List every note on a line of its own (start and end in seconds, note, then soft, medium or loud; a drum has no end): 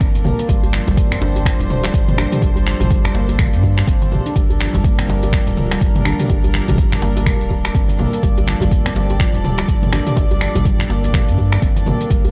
0.00 0.32 G1 medium
0.00 12.31 G3 medium
0.00 0.13 C4 medium
0.00 12.31 D4 medium
0.00 12.31 A4 medium
0.00 0.48 A#4 medium
0.00 kick loud
0.00 closed hi-hat medium
0.00 shaker soft
0.15 closed hi-hat soft
0.15 muted conga soft
0.15 high conga loud
0.24 0.32 A#3 loud
0.24 mid tom medium
0.24 high conga loud
0.24 djembe tone loud
0.24 shaker loud
0.39 closed hi-hat soft
0.39 muted conga medium
0.39 shaker medium
0.49 0.80 G1 loud
0.49 0.62 G3 medium
0.49 4.35 C5 medium
0.49 kick loud
0.49 closed hi-hat medium
0.49 djembe tone medium
0.49 shaker soft
0.63 closed hi-hat soft
0.63 djembe bass medium
0.73 0.87 F3 medium
0.73 finger snap loud
0.73 muted conga medium
0.73 shaker loud
0.87 1.17 G1 medium
0.87 0.97 G3 loud
0.87 closed hi-hat soft
0.87 djembe slap medium
0.87 high conga loud
0.87 low conga medium
0.87 djembe bass medium
0.87 shaker medium
0.97 1.05 A#3 medium
0.97 kick loud
0.97 closed hi-hat medium
0.97 muted conga soft
0.97 shaker soft
1.11 1.17 C4 loud
1.11 finger snap medium
1.11 closed hi-hat soft
1.11 low conga loud
1.21 1.53 G1 medium
1.21 1.29 D4 loud
1.21 djembe slap loud
1.21 muted conga soft
1.21 high conga medium
1.21 shaker medium
1.36 closed hi-hat soft
1.36 djembe tone loud
1.36 shaker medium
1.45 1.59 F3 medium
1.45 finger snap loud
1.45 kick loud
1.45 closed hi-hat medium
1.45 muted conga soft
1.45 high conga medium
1.45 shaker soft
1.59 1.89 D1 loud
1.59 1.65 G3 loud
1.59 closed hi-hat soft
1.59 low conga medium
1.70 1.83 F3 medium
1.70 mid tom medium
1.70 djembe tone medium
1.70 shaker loud
1.83 1.94 G3 loud
1.83 finger snap medium
1.83 closed hi-hat soft
1.83 djembe slap loud
1.83 muted conga soft
1.83 shaker medium
1.94 2.25 G1 medium
1.94 kick loud
1.94 closed hi-hat medium
1.94 shaker soft
2.08 2.14 A#3 medium
2.08 closed hi-hat soft
2.08 mid tom medium
2.08 muted conga soft
2.08 high conga loud
2.18 2.26 D4 loud
2.18 finger snap loud
2.18 high conga loud
2.18 djembe tone loud
2.18 shaker medium
2.32 2.41 G4 medium
2.32 closed hi-hat soft
2.32 mid tom medium
2.32 muted conga soft
2.32 shaker medium
2.42 2.74 G1 loud
2.42 kick loud
2.42 closed hi-hat medium
2.42 djembe tone medium
2.42 shaker soft
2.56 2.62 G3 loud
2.56 closed hi-hat soft
2.56 djembe bass medium
2.66 2.80 F3 medium
2.66 finger snap loud
2.66 muted conga medium
2.66 shaker loud
2.80 3.10 G1 medium
2.80 2.89 G3 loud
2.80 closed hi-hat soft
2.80 mid tom medium
2.80 djembe slap medium
2.80 high conga loud
2.80 djembe bass medium
2.80 low conga medium
2.80 shaker medium
2.90 3.04 G3 loud
2.90 kick loud
2.90 closed hi-hat medium
2.90 shaker soft
3.04 finger snap medium
3.04 closed hi-hat soft
3.04 low conga loud
3.14 3.55 G1 medium
3.14 3.23 A#3 loud
3.14 djembe slap loud
3.14 muted conga soft
3.14 high conga medium
3.14 shaker loud
3.29 3.38 A#3 medium
3.29 closed hi-hat soft
3.29 djembe tone medium
3.29 shaker medium
3.39 3.53 G3 medium
3.39 finger snap loud
3.39 kick loud
3.39 closed hi-hat medium
3.39 mid tom medium
3.39 muted conga soft
3.39 high conga medium
3.39 shaker soft
3.53 3.83 G2 medium
3.53 closed hi-hat soft
3.63 kick medium
3.63 high conga medium
3.63 djembe tone medium
3.63 shaker medium
3.77 finger snap medium
3.77 closed hi-hat soft
3.77 muted conga medium
3.77 djembe tone medium
3.77 shaker medium
3.87 4.19 G1 loud
3.87 3.95 C4 medium
3.87 kick loud
3.87 closed hi-hat medium
3.87 shaker soft
4.01 closed hi-hat soft
4.01 muted conga soft
4.01 high conga loud
4.12 4.25 G4 medium
4.12 mid tom medium
4.12 high conga medium
4.12 djembe tone medium
4.12 shaker loud
4.26 4.36 D4 medium
4.26 closed hi-hat soft
4.26 muted conga soft
4.26 shaker medium
4.36 4.68 G1 loud
4.36 4.49 G3 medium
4.36 8.22 A#4 medium
4.36 kick loud
4.36 closed hi-hat medium
4.36 djembe tone medium
4.36 shaker soft
4.50 closed hi-hat soft
4.50 djembe bass medium
4.60 4.74 F3 medium
4.60 finger snap loud
4.60 muted conga medium
4.60 shaker loud
4.73 5.04 G1 medium
4.73 4.84 G3 loud
4.73 closed hi-hat soft
4.73 djembe slap medium
4.73 high conga loud
4.73 low conga medium
4.73 djembe bass medium
4.73 shaker medium
4.84 4.92 A#3 medium
4.84 kick loud
4.84 closed hi-hat medium
4.84 muted conga soft
4.84 shaker soft
4.99 5.04 C4 loud
4.99 finger snap medium
4.99 closed hi-hat soft
4.99 low conga medium
5.08 5.40 G1 loud
5.08 5.21 G3 loud
5.08 muted conga medium
5.08 djembe slap loud
5.08 high conga medium
5.08 shaker medium
5.23 closed hi-hat soft
5.23 djembe tone medium
5.23 shaker medium
5.33 5.47 F3 medium
5.33 finger snap loud
5.33 kick loud
5.33 closed hi-hat medium
5.33 muted conga soft
5.33 high conga medium
5.33 shaker soft
5.47 5.77 D1 loud
5.47 5.53 G3 loud
5.47 closed hi-hat soft
5.47 low conga medium
5.57 5.71 F3 medium
5.57 mid tom medium
5.57 djembe tone medium
5.57 shaker medium
5.71 5.81 G3 loud
5.71 finger snap medium
5.71 closed hi-hat soft
5.71 muted conga medium
5.71 djembe slap loud
5.71 shaker soft
5.81 6.13 G1 loud
5.81 kick loud
5.81 closed hi-hat medium
5.81 shaker soft
5.95 6.01 A#3 medium
5.95 closed hi-hat soft
5.95 mid tom medium
5.95 muted conga soft
5.95 high conga loud
6.05 6.13 D4 loud
6.05 finger snap medium
6.05 high conga medium
6.05 djembe tone medium
6.05 shaker medium
6.19 6.29 G4 medium
6.19 closed hi-hat soft
6.19 mid tom medium
6.19 muted conga medium
6.19 shaker medium
6.30 6.61 G1 loud
6.30 kick loud
6.30 closed hi-hat medium
6.30 djembe tone medium
6.30 shaker soft
6.44 6.50 G3 loud
6.44 closed hi-hat soft
6.44 djembe bass loud
6.53 6.68 F3 medium
6.53 finger snap medium
6.53 muted conga medium
6.53 shaker medium
6.68 6.97 G1 medium
6.68 6.77 G3 loud
6.68 closed hi-hat soft
6.68 mid tom medium
6.68 djembe slap medium
6.68 high conga loud
6.68 low conga medium
6.68 djembe bass medium
6.68 shaker medium
6.78 6.91 G3 loud
6.78 kick loud
6.78 closed hi-hat medium
6.78 muted conga soft
6.78 shaker soft
6.92 finger snap medium
6.92 closed hi-hat soft
6.92 low conga medium
7.02 7.34 G1 loud
7.02 7.10 A#3 loud
7.02 muted conga medium
7.02 djembe slap loud
7.02 high conga medium
7.02 shaker medium
7.16 7.26 A#3 medium
7.16 closed hi-hat soft
7.16 djembe tone loud
7.16 shaker soft
7.26 7.40 G3 medium
7.26 finger snap medium
7.26 kick loud
7.26 closed hi-hat medium
7.26 mid tom medium
7.26 muted conga soft
7.26 high conga medium
7.26 shaker soft
7.41 7.70 D1 loud
7.41 closed hi-hat soft
7.50 kick medium
7.50 high conga medium
7.50 djembe tone medium
7.50 shaker medium
7.65 finger snap medium
7.65 closed hi-hat soft
7.65 muted conga soft
7.65 djembe tone medium
7.65 shaker medium
7.74 8.06 G1 loud
7.74 7.88 C4 medium
7.74 kick loud
7.74 closed hi-hat medium
7.74 shaker soft
7.88 closed hi-hat soft
7.88 muted conga soft
7.88 high conga medium
7.98 8.07 A#3 loud
7.98 mid tom medium
7.98 high conga loud
7.98 djembe tone medium
7.98 shaker loud
8.13 closed hi-hat soft
8.13 muted conga soft
8.13 shaker medium
8.23 8.55 G1 loud
8.23 8.36 G3 medium
8.23 12.09 D5 medium
8.23 kick loud
8.23 closed hi-hat medium
8.23 djembe tone medium
8.23 shaker soft
8.38 closed hi-hat soft
8.38 djembe bass loud
8.46 8.61 F3 medium
8.46 finger snap medium
8.46 muted conga medium
8.46 shaker medium
8.60 8.91 G1 medium
8.60 8.71 G3 loud
8.60 closed hi-hat soft
8.60 djembe slap medium
8.60 high conga medium
8.60 low conga loud
8.60 djembe bass loud
8.60 shaker soft
8.71 kick loud
8.71 closed hi-hat medium
8.71 muted conga soft
8.71 shaker soft
8.85 8.91 C4 loud
8.85 finger snap medium
8.85 closed hi-hat soft
8.85 low conga medium
8.95 9.27 G1 loud
8.95 9.09 G3 loud
8.95 muted conga soft
8.95 djembe slap loud
8.95 high conga medium
8.95 shaker medium
9.10 closed hi-hat soft
9.10 djembe tone medium
9.10 shaker soft
9.18 9.34 F3 medium
9.18 finger snap medium
9.18 kick loud
9.18 closed hi-hat medium
9.18 muted conga soft
9.18 high conga medium
9.18 shaker soft
9.34 9.63 D1 loud
9.34 9.39 G3 loud
9.34 closed hi-hat soft
9.34 low conga medium
9.44 9.58 F3 medium
9.44 mid tom loud
9.44 djembe tone medium
9.44 shaker loud
9.58 9.68 G3 loud
9.58 finger snap medium
9.58 closed hi-hat soft
9.58 muted conga medium
9.58 djembe slap loud
9.58 shaker medium
9.68 10.00 G1 medium
9.68 kick loud
9.68 closed hi-hat medium
9.68 shaker soft
9.82 9.88 A#3 medium
9.82 closed hi-hat soft
9.82 mid tom loud
9.82 muted conga soft
9.82 high conga medium
9.92 10.00 D4 loud
9.92 finger snap medium
9.92 high conga loud
9.92 djembe tone medium
9.92 shaker medium
10.06 10.16 G4 medium
10.06 closed hi-hat soft
10.06 mid tom loud
10.06 muted conga medium
10.06 shaker soft
10.16 10.48 G1 loud
10.16 kick loud
10.16 closed hi-hat medium
10.16 djembe slap medium
10.16 djembe tone medium
10.16 shaker soft
10.31 10.36 G3 loud
10.31 closed hi-hat soft
10.31 djembe bass loud
10.41 10.54 F3 medium
10.41 finger snap medium
10.41 muted conga medium
10.41 shaker medium
10.55 10.85 G1 medium
10.55 10.64 G3 loud
10.55 closed hi-hat soft
10.55 mid tom medium
10.55 djembe slap medium
10.55 high conga loud
10.55 low conga medium
10.55 djembe bass loud
10.55 shaker soft
10.65 10.78 G3 loud
10.65 kick loud
10.65 closed hi-hat medium
10.65 shaker soft
10.78 finger snap medium
10.78 closed hi-hat soft
10.78 low conga medium
10.89 11.29 G1 medium
10.89 10.97 A#3 loud
10.89 muted conga medium
10.89 djembe slap loud
10.89 high conga medium
10.89 shaker medium
11.04 11.13 A#3 medium
11.04 closed hi-hat soft
11.04 djembe tone medium
11.04 shaker soft
11.13 11.27 G3 medium
11.13 finger snap medium
11.13 kick loud
11.13 closed hi-hat medium
11.13 mid tom medium
11.13 muted conga soft
11.13 high conga medium
11.13 shaker soft
11.28 11.57 G2 medium
11.28 closed hi-hat soft
11.38 kick medium
11.38 high conga medium
11.38 djembe tone medium
11.38 shaker medium
11.52 finger snap medium
11.52 closed hi-hat soft
11.52 muted conga medium
11.52 djembe tone medium
11.52 shaker soft
11.62 11.93 G1 loud
11.62 11.75 C4 medium
11.62 kick loud
11.62 closed hi-hat medium
11.62 shaker soft
11.76 closed hi-hat soft
11.76 muted conga soft
11.76 high conga loud
11.86 11.94 A#3 loud
11.86 mid tom medium
11.86 high conga medium
11.86 djembe tone medium
11.86 shaker medium
12.01 closed hi-hat soft
12.01 muted conga medium
12.01 shaker soft
12.10 12.31 G1 loud
12.10 12.23 G3 medium
12.10 12.31 A#4 medium
12.10 kick loud
12.10 closed hi-hat medium
12.10 djembe tone medium
12.10 shaker soft
12.25 closed hi-hat soft
12.25 djembe bass loud